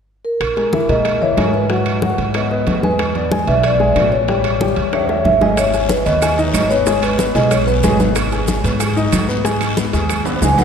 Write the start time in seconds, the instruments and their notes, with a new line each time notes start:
0.25 vibraphone A#4
0.40 upright bass A#1, high bongo, high conga, high timbale, claves
0.57 grand piano G#3 G#4 A#4, high bongo, high conga, high timbale
0.73 grand piano E3 E4 E5, high bongo, high conga, low timbale
0.89 upright bass A#2, grand piano G#3 G#4 A#4, vibraphone D#5, high bongo, high conga, high timbale
1.05 high bongo, high conga, high timbale, claves
1.21 grand piano E3 E4 E5, vibraphone C#5, high bongo, high conga
1.37 upright bass G#2, grand piano G#3 G#4 A#4, high bongo, low bongo, high conga, high timbale, low timbale, claves
1.54 vibraphone B4, high conga
1.70 grand piano F#3 F#4 F#5, high bongo, high conga, high timbale
1.86 high bongo, high conga, high timbale, claves
2.02 grand piano F#3 F#4 F#5, high bongo, high conga, low timbale
2.18 upright bass G#2, high bongo, high timbale
2.34 grand piano B3 B4 D#5, high bongo, high conga, high timbale, claves
2.51 grand piano B3 B4 D#5, high bongo, high conga
2.67 upright bass E2, high bongo, low bongo, high conga, high timbale, low timbale
2.83 grand piano G#3 G#4 G#5, vibraphone B4, high conga
2.99 high bongo, high conga, high timbale, claves
3.15 grand piano B3 B4 D5, high bongo, high conga, high timbale
3.31 grand piano G#3 G#4 G#5, high bongo, high conga, low timbale
3.47 upright bass B1, grand piano B3 B4 D5, vibraphone E5, high bongo, high conga, high timbale
3.64 vibraphone D5, high bongo, high conga, high timbale, claves
3.80 grand piano G#3 G#4 G#5, high bongo, high conga
3.96 upright bass A1, grand piano B3 B4 D5, high bongo, low bongo, high conga, high timbale, low timbale, claves
4.12 vibraphone C#5, high conga
4.28 grand piano G3 G4 G5, high bongo, high conga, high timbale
4.44 high bongo, high conga, high timbale, claves
4.60 grand piano G3 G4 G5, high bongo, high conga, low timbale
4.76 upright bass E2, high bongo, high timbale
4.93 grand piano C#4 C#5 E5, high bongo, high conga, high timbale, claves
5.09 grand piano C#4 C#5 E5, high bongo, high conga, low timbale
5.25 upright bass G#1, vibraphone E5, low bongo, high conga, low timbale
5.41 grand piano G#3 G#4 G#5, vibraphone D#5, low bongo, high conga, low timbale
5.57 vibraphone C#5, high bongo, high conga, high timbale, long guiro, claves, maracas
5.73 grand piano G#4 G#5, high bongo, high conga, high timbale, maracas
5.89 vibraphone B4, high bongo, high conga, low timbale, short guiro, maracas
6.05 upright bass D#2, grand piano B3 B4, vibraphone D#5, high bongo, high conga, high timbale, short guiro, maracas
6.22 grand piano G#4 G#5, high bongo, high conga, high timbale, long guiro, claves, maracas
6.38 grand piano D#4 D#5, high bongo, high conga, maracas
6.54 upright bass G#1, high bongo, low bongo, high conga, high timbale, low timbale, short guiro, claves, maracas
6.69 grand piano B3 B4, vibraphone C#5, high conga, short guiro, maracas
6.86 grand piano G#3 G#4, high bongo, high conga, high timbale, long guiro, maracas
7.02 vibraphone B4, high bongo, high conga, high timbale, claves, maracas
7.19 grand piano B3 B4, high bongo, high conga, low timbale, short guiro, maracas
7.35 upright bass B1, grand piano G#3 G#4, vibraphone D#5, high bongo, high timbale, short guiro, maracas
7.50 vibraphone C#5, high bongo, high conga, high timbale, long guiro, claves, maracas
7.67 grand piano B3 B4, vibraphone B4, high bongo, high conga, maracas
7.83 upright bass G#1, grand piano G#3 G#4, high bongo, low bongo, high conga, high timbale, low timbale, short guiro, maracas
7.99 grand piano B3 B4, high conga, short guiro, maracas
8.15 high bongo, high conga, high timbale, long guiro, claves, maracas
8.32 grand piano G#4 G#5, high bongo, high conga, high timbale, maracas
8.48 high bongo, high conga, low timbale, short guiro, maracas
8.64 upright bass G#2, grand piano B3 B4, high bongo, high conga, high timbale, short guiro, maracas
8.80 grand piano G#4 G#5, high bongo, high conga, high timbale, long guiro, claves, maracas
8.96 grand piano D#4 D#5, high bongo, high conga, maracas
9.12 upright bass G#2, high bongo, low bongo, high conga, high timbale, low timbale, short guiro, claves, maracas
9.28 grand piano B3 B4, high conga, short guiro, maracas
9.44 grand piano G#3 G#4, high bongo, high conga, high timbale, long guiro, maracas
9.61 high bongo, high conga, high timbale, claves, maracas
9.77 grand piano B3 B4, high bongo, high conga, low timbale, short guiro, maracas
9.93 upright bass D#2, grand piano G#3 G#4, high bongo, high timbale, short guiro, maracas
10.09 high bongo, high conga, high timbale, long guiro, claves, maracas
10.26 grand piano B3 B4, high bongo, high conga, high timbale, maracas
10.42 upright bass C#2, grand piano G#3 G#4, vibraphone G#5, high bongo, low bongo, high conga, high timbale, short guiro, maracas
10.58 grand piano B3 B4, vibraphone F#5, high conga, low timbale, short guiro, maracas